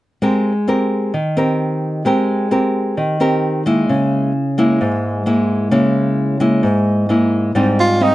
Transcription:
0, 0, Header, 1, 4, 480
1, 0, Start_track
1, 0, Key_signature, -4, "major"
1, 0, Tempo, 458365
1, 229, Time_signature, 4, 2, 24, 8
1, 8534, End_track
2, 0, Start_track
2, 0, Title_t, "Vibraphone"
2, 0, Program_c, 0, 11
2, 8123, Control_c, 0, 64, 127
2, 8390, Note_on_c, 0, 77, 42
2, 8534, Note_off_c, 0, 77, 0
2, 8534, End_track
3, 0, Start_track
3, 0, Title_t, "Tenor saxophone"
3, 0, Program_c, 1, 66
3, 8167, Note_on_c, 1, 65, 91
3, 8409, Note_on_c, 1, 63, 92
3, 8425, Note_off_c, 1, 65, 0
3, 8534, Note_off_c, 1, 63, 0
3, 8534, End_track
4, 0, Start_track
4, 0, Title_t, "Nylon-string guitar"
4, 0, Program_c, 2, 24
4, 229, Note_on_c, 2, 56, 62
4, 230, Note_on_c, 2, 60, 52
4, 233, Note_on_c, 2, 67, 45
4, 240, Note_on_c, 2, 70, 50
4, 538, Note_off_c, 2, 60, 0
4, 540, Note_off_c, 2, 67, 0
4, 544, Note_off_c, 2, 70, 0
4, 708, Note_on_c, 2, 60, 53
4, 713, Note_on_c, 2, 67, 49
4, 720, Note_on_c, 2, 70, 51
4, 1166, Note_off_c, 2, 56, 0
4, 1186, Note_off_c, 2, 60, 0
4, 1190, Note_off_c, 2, 67, 0
4, 1191, Note_off_c, 2, 70, 0
4, 1191, Note_on_c, 2, 51, 61
4, 1431, Note_on_c, 2, 60, 56
4, 1436, Note_on_c, 2, 67, 52
4, 1443, Note_on_c, 2, 70, 60
4, 2113, Note_off_c, 2, 60, 0
4, 2116, Note_off_c, 2, 67, 0
4, 2118, Note_off_c, 2, 70, 0
4, 2127, Note_off_c, 2, 51, 0
4, 2146, Note_on_c, 2, 56, 60
4, 2154, Note_on_c, 2, 60, 53
4, 2154, Note_on_c, 2, 67, 50
4, 2161, Note_on_c, 2, 70, 55
4, 2592, Note_off_c, 2, 60, 0
4, 2595, Note_off_c, 2, 67, 0
4, 2596, Note_off_c, 2, 70, 0
4, 2630, Note_on_c, 2, 60, 53
4, 2633, Note_on_c, 2, 67, 50
4, 2639, Note_on_c, 2, 70, 53
4, 3086, Note_off_c, 2, 56, 0
4, 3114, Note_on_c, 2, 51, 63
4, 3312, Note_off_c, 2, 60, 0
4, 3314, Note_off_c, 2, 67, 0
4, 3316, Note_off_c, 2, 70, 0
4, 3351, Note_on_c, 2, 60, 52
4, 3357, Note_on_c, 2, 67, 54
4, 3362, Note_on_c, 2, 70, 59
4, 3793, Note_off_c, 2, 60, 0
4, 3796, Note_off_c, 2, 67, 0
4, 3798, Note_off_c, 2, 70, 0
4, 3831, Note_on_c, 2, 56, 52
4, 3839, Note_on_c, 2, 58, 52
4, 3840, Note_on_c, 2, 64, 63
4, 4049, Note_off_c, 2, 51, 0
4, 4078, Note_on_c, 2, 49, 66
4, 4514, Note_off_c, 2, 56, 0
4, 4515, Note_off_c, 2, 58, 0
4, 4518, Note_off_c, 2, 64, 0
4, 4794, Note_on_c, 2, 56, 57
4, 4800, Note_on_c, 2, 58, 61
4, 4804, Note_on_c, 2, 64, 63
4, 5011, Note_off_c, 2, 49, 0
4, 5036, Note_on_c, 2, 44, 68
4, 5475, Note_off_c, 2, 56, 0
4, 5478, Note_off_c, 2, 58, 0
4, 5479, Note_off_c, 2, 64, 0
4, 5509, Note_on_c, 2, 56, 47
4, 5515, Note_on_c, 2, 58, 47
4, 5515, Note_on_c, 2, 64, 54
4, 5952, Note_off_c, 2, 56, 0
4, 5954, Note_off_c, 2, 58, 0
4, 5955, Note_off_c, 2, 64, 0
4, 5970, Note_off_c, 2, 44, 0
4, 5983, Note_on_c, 2, 49, 64
4, 5985, Note_on_c, 2, 56, 52
4, 5991, Note_on_c, 2, 58, 52
4, 5991, Note_on_c, 2, 64, 53
4, 6669, Note_off_c, 2, 56, 0
4, 6670, Note_off_c, 2, 58, 0
4, 6673, Note_off_c, 2, 64, 0
4, 6702, Note_on_c, 2, 56, 52
4, 6706, Note_on_c, 2, 58, 54
4, 6713, Note_on_c, 2, 64, 63
4, 6924, Note_off_c, 2, 49, 0
4, 6944, Note_on_c, 2, 44, 64
4, 7388, Note_off_c, 2, 56, 0
4, 7390, Note_off_c, 2, 58, 0
4, 7392, Note_off_c, 2, 64, 0
4, 7425, Note_on_c, 2, 56, 48
4, 7433, Note_on_c, 2, 58, 50
4, 7436, Note_on_c, 2, 64, 55
4, 7870, Note_off_c, 2, 56, 0
4, 7872, Note_off_c, 2, 58, 0
4, 7874, Note_off_c, 2, 64, 0
4, 7882, Note_off_c, 2, 44, 0
4, 7905, Note_on_c, 2, 44, 63
4, 7908, Note_on_c, 2, 55, 49
4, 7910, Note_on_c, 2, 60, 51
4, 7917, Note_on_c, 2, 63, 56
4, 8349, Note_off_c, 2, 55, 0
4, 8351, Note_off_c, 2, 60, 0
4, 8353, Note_off_c, 2, 63, 0
4, 8381, Note_on_c, 2, 55, 48
4, 8387, Note_on_c, 2, 60, 52
4, 8392, Note_on_c, 2, 63, 54
4, 8534, Note_off_c, 2, 44, 0
4, 8534, Note_off_c, 2, 55, 0
4, 8534, Note_off_c, 2, 60, 0
4, 8534, Note_off_c, 2, 63, 0
4, 8534, End_track
0, 0, End_of_file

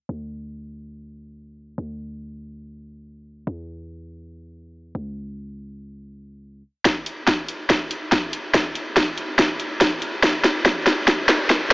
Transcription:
0, 0, Header, 1, 3, 480
1, 0, Start_track
1, 0, Tempo, 422535
1, 105, Time_signature, 4, 2, 24, 8
1, 13328, End_track
2, 0, Start_track
2, 0, Title_t, "808-style bass"
2, 0, Program_c, 0, 38
2, 104, Note_on_c, 0, 38, 86
2, 2002, Note_off_c, 0, 38, 0
2, 2023, Note_on_c, 0, 38, 85
2, 3922, Note_off_c, 0, 38, 0
2, 3943, Note_on_c, 0, 40, 84
2, 5602, Note_off_c, 0, 40, 0
2, 5624, Note_on_c, 0, 37, 93
2, 7522, Note_off_c, 0, 37, 0
2, 13328, End_track
3, 0, Start_track
3, 0, Title_t, "Drums"
3, 7782, Note_on_c, 9, 38, 49
3, 7782, Note_on_c, 9, 42, 83
3, 7784, Note_on_c, 9, 36, 97
3, 7896, Note_off_c, 9, 38, 0
3, 7896, Note_off_c, 9, 42, 0
3, 7897, Note_off_c, 9, 36, 0
3, 8022, Note_on_c, 9, 42, 63
3, 8136, Note_off_c, 9, 42, 0
3, 8262, Note_on_c, 9, 38, 49
3, 8262, Note_on_c, 9, 42, 81
3, 8264, Note_on_c, 9, 36, 93
3, 8376, Note_off_c, 9, 38, 0
3, 8376, Note_off_c, 9, 42, 0
3, 8378, Note_off_c, 9, 36, 0
3, 8503, Note_on_c, 9, 42, 63
3, 8616, Note_off_c, 9, 42, 0
3, 8743, Note_on_c, 9, 38, 53
3, 8743, Note_on_c, 9, 42, 78
3, 8745, Note_on_c, 9, 36, 94
3, 8857, Note_off_c, 9, 38, 0
3, 8857, Note_off_c, 9, 42, 0
3, 8858, Note_off_c, 9, 36, 0
3, 8983, Note_on_c, 9, 42, 68
3, 9097, Note_off_c, 9, 42, 0
3, 9223, Note_on_c, 9, 38, 53
3, 9223, Note_on_c, 9, 42, 83
3, 9225, Note_on_c, 9, 36, 102
3, 9337, Note_off_c, 9, 38, 0
3, 9337, Note_off_c, 9, 42, 0
3, 9338, Note_off_c, 9, 36, 0
3, 9464, Note_on_c, 9, 42, 71
3, 9577, Note_off_c, 9, 42, 0
3, 9704, Note_on_c, 9, 38, 59
3, 9704, Note_on_c, 9, 42, 82
3, 9705, Note_on_c, 9, 36, 96
3, 9817, Note_off_c, 9, 38, 0
3, 9817, Note_off_c, 9, 42, 0
3, 9818, Note_off_c, 9, 36, 0
3, 9944, Note_on_c, 9, 42, 66
3, 10058, Note_off_c, 9, 42, 0
3, 10185, Note_on_c, 9, 36, 97
3, 10185, Note_on_c, 9, 38, 66
3, 10185, Note_on_c, 9, 42, 83
3, 10298, Note_off_c, 9, 36, 0
3, 10298, Note_off_c, 9, 38, 0
3, 10298, Note_off_c, 9, 42, 0
3, 10424, Note_on_c, 9, 42, 66
3, 10538, Note_off_c, 9, 42, 0
3, 10663, Note_on_c, 9, 38, 68
3, 10663, Note_on_c, 9, 42, 83
3, 10665, Note_on_c, 9, 36, 98
3, 10776, Note_off_c, 9, 38, 0
3, 10776, Note_off_c, 9, 42, 0
3, 10778, Note_off_c, 9, 36, 0
3, 10902, Note_on_c, 9, 42, 68
3, 11016, Note_off_c, 9, 42, 0
3, 11141, Note_on_c, 9, 38, 68
3, 11141, Note_on_c, 9, 42, 86
3, 11144, Note_on_c, 9, 36, 99
3, 11255, Note_off_c, 9, 38, 0
3, 11255, Note_off_c, 9, 42, 0
3, 11258, Note_off_c, 9, 36, 0
3, 11382, Note_on_c, 9, 42, 72
3, 11495, Note_off_c, 9, 42, 0
3, 11623, Note_on_c, 9, 38, 76
3, 11623, Note_on_c, 9, 42, 82
3, 11624, Note_on_c, 9, 36, 97
3, 11736, Note_off_c, 9, 38, 0
3, 11736, Note_off_c, 9, 42, 0
3, 11737, Note_off_c, 9, 36, 0
3, 11863, Note_on_c, 9, 38, 73
3, 11863, Note_on_c, 9, 42, 62
3, 11977, Note_off_c, 9, 38, 0
3, 11977, Note_off_c, 9, 42, 0
3, 12103, Note_on_c, 9, 38, 82
3, 12103, Note_on_c, 9, 42, 84
3, 12104, Note_on_c, 9, 36, 102
3, 12217, Note_off_c, 9, 36, 0
3, 12217, Note_off_c, 9, 38, 0
3, 12217, Note_off_c, 9, 42, 0
3, 12343, Note_on_c, 9, 38, 83
3, 12343, Note_on_c, 9, 42, 65
3, 12456, Note_off_c, 9, 38, 0
3, 12456, Note_off_c, 9, 42, 0
3, 12582, Note_on_c, 9, 38, 82
3, 12582, Note_on_c, 9, 42, 82
3, 12584, Note_on_c, 9, 36, 98
3, 12695, Note_off_c, 9, 38, 0
3, 12695, Note_off_c, 9, 42, 0
3, 12697, Note_off_c, 9, 36, 0
3, 12822, Note_on_c, 9, 38, 86
3, 12822, Note_on_c, 9, 42, 72
3, 12936, Note_off_c, 9, 38, 0
3, 12936, Note_off_c, 9, 42, 0
3, 13063, Note_on_c, 9, 38, 88
3, 13063, Note_on_c, 9, 42, 83
3, 13064, Note_on_c, 9, 36, 103
3, 13176, Note_off_c, 9, 38, 0
3, 13176, Note_off_c, 9, 42, 0
3, 13177, Note_off_c, 9, 36, 0
3, 13328, End_track
0, 0, End_of_file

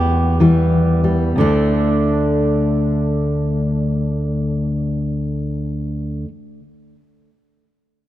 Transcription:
0, 0, Header, 1, 2, 480
1, 0, Start_track
1, 0, Tempo, 597610
1, 555, Tempo, 667408
1, 1027, Time_signature, 3, 2, 24, 8
1, 2955, Tempo, 686499
1, 5788, End_track
2, 0, Start_track
2, 0, Title_t, "Steel-string acoustic guitar"
2, 0, Program_c, 0, 25
2, 0, Note_on_c, 0, 40, 60
2, 0, Note_on_c, 0, 59, 42
2, 0, Note_on_c, 0, 67, 76
2, 323, Note_on_c, 0, 52, 43
2, 329, Note_on_c, 0, 55, 35
2, 796, Note_off_c, 0, 55, 0
2, 805, Note_on_c, 0, 55, 37
2, 1002, Note_off_c, 0, 40, 0
2, 1005, Note_off_c, 0, 52, 0
2, 1030, Note_off_c, 0, 67, 0
2, 1033, Note_off_c, 0, 59, 0
2, 1034, Note_on_c, 0, 38, 48
2, 1036, Note_off_c, 0, 55, 0
2, 1050, Note_on_c, 0, 50, 47
2, 1063, Note_on_c, 0, 57, 43
2, 1071, Note_on_c, 0, 62, 58
2, 4500, Note_off_c, 0, 38, 0
2, 4507, Note_off_c, 0, 62, 0
2, 4515, Note_off_c, 0, 50, 0
2, 4528, Note_off_c, 0, 57, 0
2, 5788, End_track
0, 0, End_of_file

